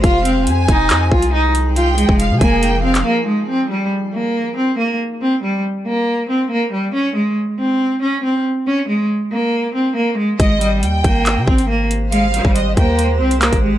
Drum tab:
HH |x-x-x-x-x--x--x-|x-x-x-x-x--x----|----------------|----------------|
CP |--------x-------|-----------x----|----------------|----------------|
BD |o-----o---o-----|---o--o---------|----------------|----------------|

HH |----------------|----------------|x-x-x-x-x--x--x-|x-x-x-x-x--xxx--|
CP |----------------|----------------|--------x-------|------------x---|
BD |----------------|----------------|o-----o---o-----|---o--o------o--|